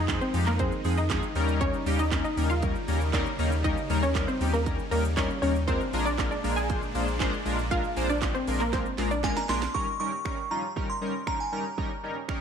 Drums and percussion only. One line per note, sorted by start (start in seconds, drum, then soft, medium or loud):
0.08 kick loud
0.08 snare medium
0.08 clap loud
0.08 clap medium
0.08 closed hi-hat medium
0.08 shaker medium
0.21 shaker medium
0.34 open hi-hat medium
0.34 shaker medium
0.46 clap medium
0.46 shaker medium
0.59 kick loud
0.59 closed hi-hat medium
0.59 shaker medium
0.72 shaker medium
0.84 open hi-hat medium
0.84 shaker medium
0.97 shaker medium
1.10 kick loud
1.10 snare loud
1.10 clap loud
1.10 clap medium
1.10 closed hi-hat medium
1.10 shaker medium
1.23 shaker medium
1.35 open hi-hat medium
1.35 shaker medium
1.48 shaker medium
1.61 kick loud
1.61 closed hi-hat medium
1.61 shaker medium
1.74 shaker medium
1.86 open hi-hat medium
1.86 shaker medium
1.99 shaker medium
2.12 kick loud
2.12 snare medium
2.12 clap loud
2.12 clap medium
2.12 closed hi-hat medium
2.12 shaker medium
2.25 shaker medium
2.37 open hi-hat medium
2.37 shaker medium
2.50 shaker medium
2.62 kick loud
2.62 closed hi-hat medium
2.62 shaker medium
2.75 shaker medium
2.88 open hi-hat medium
2.88 shaker medium
3.01 shaker medium
3.13 kick loud
3.13 snare loud
3.13 clap loud
3.13 closed hi-hat medium
3.13 shaker medium
3.26 shaker medium
3.39 open hi-hat medium
3.39 shaker medium
3.52 shaker medium
3.64 kick loud
3.64 closed hi-hat medium
3.64 shaker medium
3.77 shaker medium
3.90 open hi-hat medium
3.90 shaker medium
4.03 shaker medium
4.15 kick loud
4.15 snare medium
4.15 clap loud
4.15 clap medium
4.15 closed hi-hat medium
4.15 shaker medium
4.28 shaker medium
4.41 open hi-hat medium
4.41 shaker medium
4.54 shaker medium
4.66 kick loud
4.66 closed hi-hat medium
4.66 shaker medium
4.79 shaker medium
4.92 open hi-hat medium
4.92 shaker medium
5.05 shaker medium
5.17 kick loud
5.17 snare loud
5.17 clap loud
5.17 closed hi-hat medium
5.17 shaker medium
5.30 shaker medium
5.43 open hi-hat medium
5.43 shaker medium
5.56 shaker medium
5.68 kick loud
5.68 closed hi-hat medium
5.68 shaker medium
5.81 shaker medium
5.93 open hi-hat medium
5.93 shaker medium
6.06 shaker medium
6.18 kick loud
6.18 snare medium
6.18 clap loud
6.18 clap medium
6.18 closed hi-hat medium
6.18 shaker medium
6.32 shaker medium
6.44 open hi-hat medium
6.44 shaker medium
6.57 shaker medium
6.70 kick loud
6.70 closed hi-hat medium
6.70 shaker medium
6.82 shaker medium
6.95 open hi-hat medium
6.95 shaker medium
7.08 shaker medium
7.20 kick loud
7.20 snare loud
7.20 clap medium
7.20 clap loud
7.20 closed hi-hat medium
7.20 shaker medium
7.33 shaker medium
7.46 open hi-hat medium
7.46 shaker medium
7.59 shaker medium
7.71 kick loud
7.71 closed hi-hat medium
7.71 shaker medium
7.84 shaker medium
7.96 open hi-hat medium
7.96 shaker medium
8.10 shaker medium
8.22 kick loud
8.22 snare medium
8.22 clap loud
8.22 clap medium
8.22 closed hi-hat medium
8.22 shaker medium
8.35 shaker medium
8.47 open hi-hat medium
8.47 shaker medium
8.60 clap medium
8.60 shaker medium
8.73 kick loud
8.73 snare medium
8.73 closed hi-hat medium
8.73 shaker medium
8.86 shaker medium
8.98 snare medium
8.98 open hi-hat medium
8.98 shaker medium
9.11 shaker medium
9.24 kick loud
9.24 snare loud
9.24 clap medium
9.24 closed hi-hat medium
9.24 shaker medium
9.37 snare medium
9.37 shaker medium
9.49 snare loud
9.49 open hi-hat medium
9.49 shaker medium
9.62 snare loud
9.62 shaker medium
9.75 kick loud
10.25 finger snap loud
10.25 kick loud
10.77 kick loud
11.27 finger snap loud
11.27 kick loud
11.78 kick loud
12.29 finger snap loud
12.29 kick loud